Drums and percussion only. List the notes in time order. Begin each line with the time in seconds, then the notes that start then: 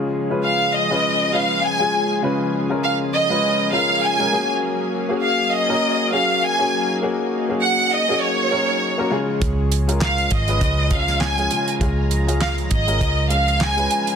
9.42 kick, closed hi-hat
9.72 closed hi-hat
9.89 closed hi-hat
10.01 snare, clap
10.18 closed hi-hat
10.31 kick, closed hi-hat
10.48 closed hi-hat
10.61 kick, closed hi-hat
10.91 kick, closed hi-hat
11.08 snare, closed hi-hat
11.21 snare, clap
11.38 closed hi-hat
11.51 closed hi-hat
11.68 closed hi-hat
11.81 kick, closed hi-hat
12.11 closed hi-hat
12.29 closed hi-hat
12.41 snare, clap
12.58 closed hi-hat
12.71 kick, closed hi-hat
12.88 closed hi-hat
13.01 kick, closed hi-hat
13.31 closed hi-hat
13.48 closed hi-hat
13.61 snare, clap
13.78 closed hi-hat
13.91 closed hi-hat
14.07 closed hi-hat